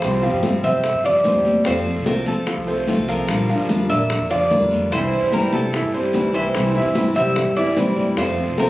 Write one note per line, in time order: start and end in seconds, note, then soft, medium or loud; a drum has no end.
0.00 0.22 C2 loud
0.00 0.22 C3 medium
0.00 0.22 F3 medium
0.00 0.22 G3 medium
0.00 0.22 C4 medium
0.00 0.21 G4 medium
0.00 0.60 C5 medium
0.00 high bongo medium
0.00 high conga soft
0.00 long guiro medium
0.00 maracas medium
0.22 0.56 F3 medium
0.22 0.43 G3 soft
0.22 0.43 C4 soft
0.22 0.56 F4 medium
0.22 0.42 G4 medium
0.22 0.56 F5 medium
0.22 high bongo soft
0.22 high conga soft
0.22 maracas soft
0.32 0.62 G2 medium
0.43 0.63 C3 medium
0.43 0.63 F3 medium
0.43 0.63 G3 medium
0.43 0.63 C4 medium
0.43 0.62 G4 medium
0.43 high bongo medium
0.43 high conga loud
0.43 short guiro medium
0.43 maracas medium
0.63 0.92 C3 medium
0.63 0.84 G3 soft
0.63 0.97 C4 medium
0.63 0.84 C4 soft
0.63 0.83 G4 soft
0.63 0.97 C5 medium
0.63 1.05 E5 medium
0.63 high conga soft
0.63 low conga medium
0.63 short guiro medium
0.63 maracas soft
0.84 muted steel-string acoustic guitar stroke medium
0.84 high bongo medium
0.84 high conga soft
0.84 long guiro medium
0.84 maracas medium
0.94 1.33 G2 medium
1.04 1.21 F3 medium
1.04 1.24 G3 soft
1.04 1.24 C4 soft
1.04 1.21 F4 medium
1.04 1.24 G4 soft
1.04 1.62 D5 loud
1.04 1.21 F5 medium
1.04 high bongo soft
1.04 high conga soft
1.04 maracas soft
1.24 1.63 C3 medium
1.24 1.64 F3 medium
1.24 1.65 G3 medium
1.24 1.58 C4 medium
1.24 1.65 C4 medium
1.24 1.65 G4 medium
1.24 1.58 C5 medium
1.24 high bongo soft
1.24 low bongo medium
1.24 high conga medium
1.24 short guiro medium
1.24 maracas medium
1.35 1.64 E2 medium
1.45 high bongo soft
1.45 high conga medium
1.45 short guiro medium
1.45 maracas soft
1.64 1.85 F2 loud
1.64 1.84 C3 medium
1.64 1.85 F3 medium
1.64 1.99 F3 medium
1.64 1.85 A3 medium
1.64 1.85 C4 medium
1.64 1.99 F4 medium
1.64 1.83 F4 medium
1.64 2.06 C5 loud
1.64 1.99 F5 medium
1.64 high bongo medium
1.64 long guiro medium
1.64 maracas medium
1.85 2.05 A3 soft
1.85 2.05 C4 soft
1.85 2.05 F4 soft
1.85 high bongo soft
1.85 high conga soft
1.85 maracas soft
1.96 2.25 C2 medium
2.05 2.25 C3 medium
2.05 2.26 F3 medium
2.05 2.40 A3 medium
2.05 2.26 A3 medium
2.05 2.26 C4 medium
2.05 2.24 F4 medium
2.05 2.40 A4 medium
2.05 2.27 A#4 medium
2.05 2.40 C5 medium
2.05 high bongo medium
2.05 high conga loud
2.05 short guiro medium
2.05 maracas medium
2.25 2.56 F3 medium
2.25 2.46 A3 soft
2.25 2.46 C4 soft
2.25 2.46 F4 soft
2.25 2.65 A4 medium
2.25 high conga medium
2.25 short guiro medium
2.25 maracas soft
2.46 2.64 F3 medium
2.46 2.64 F4 medium
2.46 2.64 F5 medium
2.46 muted steel-string acoustic guitar stroke medium
2.46 high bongo medium
2.46 high conga soft
2.46 long guiro medium
2.46 maracas medium
2.57 2.96 C2 medium
2.67 3.01 A3 medium
2.67 2.87 A3 soft
2.67 2.87 C4 soft
2.67 2.87 F4 soft
2.67 3.01 A4 medium
2.67 3.01 C5 medium
2.67 high bongo soft
2.67 high conga soft
2.67 maracas soft
2.87 3.27 C3 medium
2.87 3.27 F3 medium
2.87 3.28 A3 medium
2.87 3.28 C4 medium
2.87 3.28 F4 medium
2.87 high bongo soft
2.87 low bongo medium
2.87 high conga medium
2.87 short guiro medium
2.87 maracas medium
2.98 3.27 C2 medium
3.08 3.42 F3 medium
3.08 3.42 F4 medium
3.08 3.92 A#4 medium
3.08 3.42 F5 medium
3.08 high bongo soft
3.08 short guiro medium
3.08 maracas soft
3.27 3.48 A#1 loud
3.27 3.47 D3 medium
3.27 3.48 G3 medium
3.27 3.48 D4 medium
3.27 3.46 F4 medium
3.27 high bongo medium
3.27 high conga soft
3.27 long guiro medium
3.27 maracas medium
3.48 3.82 F3 medium
3.48 3.68 G3 soft
3.48 3.68 D4 soft
3.48 3.68 F4 medium
3.48 3.83 F4 medium
3.48 3.83 F5 medium
3.48 high bongo soft
3.48 high conga soft
3.48 maracas soft
3.59 3.88 F2 medium
3.69 3.88 D3 medium
3.69 3.89 G3 medium
3.69 3.89 D4 medium
3.69 3.88 F4 medium
3.69 high bongo medium
3.69 high conga loud
3.69 short guiro medium
3.69 maracas medium
3.89 4.18 A#2 medium
3.89 4.09 G3 soft
3.89 4.23 A#3 medium
3.89 4.09 D4 soft
3.89 4.09 F4 medium
3.89 4.23 A#4 medium
3.89 4.23 D5 medium
3.89 4.27 E5 loud
3.89 high conga soft
3.89 low conga medium
3.89 short guiro medium
3.89 maracas soft
4.09 muted steel-string acoustic guitar stroke medium
4.09 high bongo medium
4.09 high conga soft
4.09 low conga medium
4.09 long guiro medium
4.09 maracas medium
4.20 4.59 F2 medium
4.29 4.47 F3 medium
4.29 4.50 G3 soft
4.29 4.50 D4 soft
4.29 4.49 F4 medium
4.29 4.47 F4 medium
4.29 4.92 D5 loud
4.29 4.47 F5 medium
4.29 high bongo soft
4.29 high conga soft
4.29 maracas soft
4.50 4.90 D3 medium
4.50 4.91 G3 medium
4.50 4.84 A#3 medium
4.50 4.91 D4 medium
4.50 4.91 F4 medium
4.50 4.84 A#4 medium
4.50 4.84 D5 medium
4.50 high bongo soft
4.50 low bongo medium
4.50 high conga medium
4.50 short guiro medium
4.50 maracas medium
4.61 4.90 F2 loud
4.71 high bongo soft
4.71 high conga medium
4.71 short guiro medium
4.71 maracas soft
4.91 5.11 C2 loud
4.91 5.11 C3 medium
4.91 5.25 E3 medium
4.91 5.11 E3 medium
4.91 5.12 G3 medium
4.91 5.12 C4 medium
4.91 5.25 E4 medium
4.91 5.10 E4 medium
4.91 5.34 C5 loud
4.91 5.25 E5 medium
4.91 high bongo medium
4.91 high conga soft
4.91 long guiro medium
4.91 maracas medium
5.11 5.32 G3 soft
5.11 5.32 C4 soft
5.11 5.31 E4 medium
5.11 high bongo soft
5.11 high conga soft
5.11 maracas soft
5.22 5.51 G2 medium
5.32 5.52 C3 medium
5.32 5.52 E3 medium
5.32 5.66 G3 medium
5.32 5.52 G3 medium
5.32 5.53 C4 medium
5.32 5.51 E4 medium
5.32 5.66 G4 medium
5.32 5.53 A#4 medium
5.32 5.66 C5 medium
5.32 high bongo medium
5.32 high conga medium
5.32 short guiro medium
5.32 maracas medium
5.52 5.82 C3 medium
5.52 5.72 G3 soft
5.52 5.73 C4 soft
5.52 5.72 E4 soft
5.52 5.91 A4 medium
5.52 high conga loud
5.52 short guiro medium
5.52 maracas soft
5.72 5.90 E3 medium
5.72 5.90 E4 medium
5.72 5.90 E5 medium
5.72 muted steel-string acoustic guitar stroke medium
5.72 high bongo medium
5.72 high conga soft
5.72 long guiro medium
5.72 maracas medium
5.83 6.12 G2 medium
5.93 6.27 G3 medium
5.93 6.13 G3 soft
5.93 6.13 C4 soft
5.93 6.13 E4 soft
5.93 6.27 G4 medium
5.93 6.27 C5 medium
5.93 high bongo soft
5.93 high conga soft
5.93 maracas soft
6.13 6.32 D2 medium
6.13 6.53 C3 medium
6.13 6.53 E3 medium
6.13 6.54 G3 medium
6.13 6.54 C4 medium
6.13 6.54 E4 medium
6.13 high bongo soft
6.13 low bongo medium
6.13 high conga medium
6.13 short guiro medium
6.13 maracas medium
6.33 6.52 C2 medium
6.33 6.67 E3 medium
6.33 6.68 E4 medium
6.33 7.12 C5 medium
6.33 6.68 E5 medium
6.33 high bongo soft
6.33 short guiro medium
6.33 maracas soft
6.54 6.74 C2 loud
6.54 6.74 C3 medium
6.54 6.74 E3 medium
6.54 6.74 G3 medium
6.54 6.75 C4 medium
6.54 6.74 E4 medium
6.54 high bongo medium
6.54 high conga soft
6.54 long guiro medium
6.54 maracas medium
6.75 7.08 E3 medium
6.75 6.94 G3 soft
6.75 6.95 C4 medium
6.75 6.94 E4 medium
6.75 7.08 E4 medium
6.75 7.08 E5 medium
6.75 high bongo soft
6.75 high conga soft
6.75 maracas soft
6.85 7.14 G2 medium
6.94 7.14 C3 medium
6.94 7.15 E3 medium
6.94 7.15 G3 medium
6.94 7.15 C4 medium
6.94 7.14 E4 medium
6.94 high bongo soft
6.94 high conga loud
6.94 short guiro medium
6.94 maracas medium
7.15 7.45 C3 medium
7.15 7.49 G3 medium
7.15 7.35 G3 soft
7.15 7.35 C4 soft
7.15 7.35 E4 soft
7.15 7.49 G4 medium
7.15 7.49 C5 medium
7.15 7.56 E5 loud
7.15 high conga soft
7.15 low conga medium
7.15 short guiro medium
7.15 maracas soft
7.35 muted steel-string acoustic guitar stroke medium
7.35 high bongo medium
7.35 high conga soft
7.35 low conga medium
7.35 long guiro medium
7.35 maracas medium
7.46 7.85 G2 medium
7.56 7.73 E3 medium
7.56 7.76 G3 soft
7.56 7.76 C4 soft
7.56 7.75 E4 soft
7.56 7.73 E4 medium
7.56 8.19 D5 loud
7.56 7.73 E5 medium
7.56 high bongo soft
7.56 high conga soft
7.56 maracas soft
7.76 8.16 C3 medium
7.76 8.16 E3 medium
7.76 8.10 G3 medium
7.76 8.17 G3 medium
7.76 8.17 C4 medium
7.76 8.17 E4 medium
7.76 8.10 G4 medium
7.76 8.10 C5 medium
7.76 high bongo soft
7.76 low bongo medium
7.76 high conga medium
7.76 short guiro medium
7.76 maracas medium
7.87 8.16 G2 medium
7.96 high bongo soft
7.96 high conga medium
7.96 short guiro medium
7.96 maracas soft
8.17 8.36 F2 loud
8.17 8.36 C3 medium
8.17 8.51 F3 medium
8.17 8.37 F3 medium
8.17 8.37 A3 medium
8.17 8.37 C4 medium
8.17 8.51 F4 medium
8.17 8.35 F4 medium
8.17 8.59 C5 medium
8.17 8.51 F5 medium
8.17 high bongo medium
8.17 high conga soft
8.17 long guiro medium
8.17 maracas medium
8.37 8.58 A3 soft
8.37 8.57 C4 soft
8.37 8.57 F4 soft
8.37 high bongo soft
8.37 high conga soft
8.37 maracas soft
8.47 8.70 C2 medium
8.57 8.70 C3 medium
8.57 8.70 F3 medium
8.57 8.70 A3 medium
8.57 8.70 C4 medium
8.57 8.70 F4 medium
8.57 8.70 A4 medium
8.57 8.70 A#4 medium
8.57 8.70 C5 medium
8.57 high bongo medium
8.57 high conga medium
8.57 short guiro medium
8.57 maracas medium